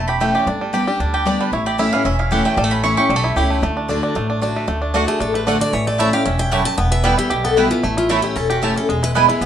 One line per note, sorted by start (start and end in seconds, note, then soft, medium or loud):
0.00 0.30 E1 medium
0.00 0.45 E2 medium
0.00 0.20 A3 medium
0.00 0.19 E4 medium
0.08 0.34 G4 medium
0.08 0.20 B5 loud
0.20 0.46 E3 medium
0.20 0.46 A3 medium
0.20 0.47 A3 medium
0.20 0.46 C#4 loud
0.20 0.46 E4 loud
0.20 0.34 G5 medium
0.35 0.47 G4 medium
0.35 0.59 D5 medium
0.47 0.83 G1 medium
0.47 0.97 G2 medium
0.47 0.85 D4 medium
0.61 0.86 G3 medium
0.73 0.86 G3 medium
0.73 0.87 B3 loud
0.73 0.87 D4 medium
0.73 1.11 G4 medium
0.73 0.87 G4 loud
0.87 1.24 G3 medium
0.87 1.00 D4 medium
0.87 1.00 G4 medium
1.00 1.36 D2 medium
1.00 1.50 D3 medium
1.00 1.25 D4 medium
1.14 1.50 G4 medium
1.14 1.26 G5 loud
1.26 1.51 G3 medium
1.26 1.51 B3 medium
1.26 1.51 D4 medium
1.26 1.53 D4 medium
1.26 1.52 G4 medium
1.26 1.40 D5 loud
1.40 1.53 G3 medium
1.40 1.52 B4 medium
1.52 1.88 A1 loud
1.52 2.03 A2 medium
1.52 1.78 E4 medium
1.52 1.66 C#5 medium
1.66 2.03 G4 medium
1.66 1.78 D5 loud
1.78 1.92 E3 medium
1.78 1.92 A3 medium
1.78 1.92 C#4 loud
1.78 2.16 E4 medium
1.78 1.91 E4 loud
1.78 1.92 E5 loud
1.93 2.29 E3 medium
1.93 2.05 C#4 medium
1.93 2.05 E4 medium
1.93 2.05 F5 loud
2.05 2.41 E1 medium
2.05 2.55 E2 medium
2.05 2.43 C#4 medium
2.05 2.18 E5 medium
2.19 2.56 E4 medium
2.19 2.31 F5 medium
2.31 2.56 E3 loud
2.31 2.57 A3 loud
2.31 2.57 C#4 loud
2.31 2.57 E4 loud
2.31 2.69 G4 medium
2.31 2.45 F#5 medium
2.45 2.57 A3 medium
2.45 2.57 G5 loud
2.57 2.93 A1 loud
2.57 3.08 A2 medium
2.57 2.64 G3 medium
2.57 2.70 A5 medium
2.64 2.84 A3 medium
2.71 3.08 C#4 medium
2.71 2.83 B5 loud
2.83 2.97 E3 loud
2.83 2.97 A3 medium
2.83 2.97 C#4 loud
2.83 3.21 E4 medium
2.83 2.97 E4 loud
2.83 2.96 C#6 loud
2.97 3.11 C#4 medium
2.97 3.10 E4 medium
2.97 3.34 G4 medium
2.97 3.59 C#6 loud
3.09 3.32 B1 medium
3.09 3.60 E2 loud
3.09 3.16 G3 medium
3.16 3.37 A3 medium
3.24 3.60 E4 medium
3.36 3.58 C#2 medium
3.36 3.61 E3 medium
3.36 3.62 A3 loud
3.36 3.62 C#4 loud
3.36 3.62 E4 loud
3.36 3.63 G4 medium
3.50 3.63 A3 medium
3.62 3.98 D2 loud
3.62 3.87 D3 medium
3.62 4.00 A3 medium
3.77 3.88 D4 medium
3.88 4.14 D3 loud
3.88 4.14 A3 medium
3.88 4.02 D4 medium
3.88 4.15 D4 loud
3.88 4.15 F#4 loud
4.03 4.28 D4 medium
4.15 4.52 A1 medium
4.15 4.65 A2 medium
4.15 4.53 A3 medium
4.30 4.41 D4 medium
4.42 4.66 D3 medium
4.42 4.67 A3 medium
4.42 4.68 D4 medium
4.42 4.67 D4 medium
4.42 4.67 F#4 loud
4.56 4.67 A3 medium
4.68 5.04 D2 loud
4.68 4.93 D3 medium
4.68 5.05 A3 medium
4.82 4.93 D4 soft
4.94 5.19 D3 medium
4.94 5.19 A3 medium
4.94 5.04 A3 loud
4.94 5.19 D4 medium
4.94 5.20 D4 medium
4.94 5.04 F#4 loud
4.94 5.20 F#4 loud
4.94 5.04 D5 loud
4.94 5.04 F#5 loud
5.08 5.33 A3 medium
5.08 5.20 G#4 medium
5.20 5.57 A1 medium
5.20 5.71 A2 medium
5.20 5.46 D4 medium
5.20 5.34 A4 medium
5.34 5.71 A3 medium
5.34 5.48 B4 medium
5.47 5.72 D3 medium
5.47 5.56 A3 loud
5.47 5.72 A3 medium
5.47 5.60 D4 medium
5.47 5.72 D4 medium
5.47 5.56 F#4 loud
5.47 5.72 F#4 medium
5.47 5.61 C5 medium
5.47 5.57 D5 loud
5.47 5.57 F#5 loud
5.61 5.73 D4 medium
5.61 5.73 D5 loud
5.73 6.09 A1 medium
5.73 6.23 A2 medium
5.73 6.91 E3 medium
5.73 5.86 C#5 loud
5.87 6.23 A3 medium
5.87 5.99 D5 loud
5.98 6.12 E3 loud
5.98 6.08 A3 loud
5.98 6.13 A3 medium
5.98 6.13 C#4 medium
5.98 6.09 E4 medium
5.98 6.39 E4 medium
5.98 6.12 E4 loud
5.98 6.09 C#5 loud
5.98 6.13 E5 loud
5.98 6.09 A5 loud
6.13 6.26 C#4 medium
6.13 6.25 E4 medium
6.13 6.50 G4 medium
6.13 6.25 F5 loud
6.25 6.62 E1 medium
6.25 6.51 G2 medium
6.25 6.63 C#4 medium
6.25 6.39 E5 medium
6.39 7.17 E4 medium
6.39 6.52 G5 loud
6.51 6.77 F#2 loud
6.51 6.61 A3 medium
6.51 6.61 E4 loud
6.51 6.78 G4 medium
6.51 6.62 C#5 loud
6.51 6.65 F#5 loud
6.51 6.62 A5 loud
6.65 6.78 A3 medium
6.65 6.77 A5 loud
6.77 7.14 E1 medium
6.77 7.28 E2 medium
6.77 7.15 B3 medium
6.77 6.91 G5 loud
6.91 7.70 E3 medium
6.91 7.04 E5 loud
7.04 7.29 E3 loud
7.04 7.41 G3 medium
7.04 7.30 G3 loud
7.04 7.14 B3 loud
7.04 7.30 B3 loud
7.04 7.14 E4 loud
7.04 7.30 E4 loud
7.04 7.17 B4 medium
7.04 7.14 B4 loud
7.04 7.14 G5 loud
7.18 7.57 E4 medium
7.18 7.29 G4 loud
7.30 7.66 B1 medium
7.30 7.81 B2 medium
7.30 7.68 G4 medium
7.30 7.44 G4 medium
7.44 7.81 B3 medium
7.44 7.57 A4 medium
7.57 7.70 E3 medium
7.57 7.70 G3 medium
7.57 7.66 B3 medium
7.57 7.70 B3 medium
7.57 7.97 E4 medium
7.57 7.67 E4 loud
7.57 7.69 E4 medium
7.57 7.70 F#4 medium
7.57 7.67 B4 loud
7.57 7.67 G5 loud
7.70 9.11 E3 medium
7.70 7.83 B3 soft
7.70 7.82 E4 medium
7.70 7.84 F4 medium
7.83 8.19 A1 loud
7.83 8.33 A2 medium
7.83 8.09 A3 medium
7.83 7.97 E4 medium
7.97 8.23 E4 medium
7.97 8.10 F4 medium
8.09 8.34 E3 loud
8.09 8.19 A3 loud
8.09 8.47 A3 medium
8.09 8.35 A3 loud
8.09 8.35 C#4 loud
8.09 8.19 E4 loud
8.09 8.35 E4 loud
8.09 8.22 F#4 medium
8.09 8.19 C#5 loud
8.09 8.20 A5 medium
8.22 8.60 E4 medium
8.22 8.36 G4 medium
8.36 8.72 E1 medium
8.36 8.86 E2 medium
8.36 8.73 C#4 medium
8.36 8.49 A4 medium
8.50 8.62 F#4 medium
8.50 8.86 G4 medium
8.62 8.75 E3 medium
8.62 8.75 A3 medium
8.62 8.72 A3 loud
8.62 8.76 C#4 medium
8.62 8.89 E4 medium
8.62 8.72 E4 medium
8.62 8.75 E4 loud
8.62 8.76 G4 medium
8.62 8.72 C#5 loud
8.62 8.72 A5 loud
8.76 8.89 C#4 soft
8.76 8.89 C#4 medium
8.76 8.88 E4 medium
8.76 8.89 A4 medium
8.89 9.25 E1 medium
8.89 9.39 E2 medium
8.89 9.14 G#3 medium
8.89 9.02 G#4 medium
9.03 9.27 E4 medium
9.03 9.11 B4 loud
9.15 9.28 E3 loud
9.15 9.46 G#3 medium
9.15 9.29 G#3 medium
9.15 9.24 B3 loud
9.15 9.29 B3 loud
9.15 9.24 E4 loud
9.15 9.28 E4 loud
9.15 9.25 B4 loud
9.15 9.25 G#5 loud
9.29 9.42 B3 medium
9.29 9.46 E4 medium
9.29 9.41 E4 medium
9.29 9.41 G#4 medium
9.41 9.46 B1 medium
9.41 9.46 B2 medium
9.41 9.46 B3 medium
9.41 9.46 B4 medium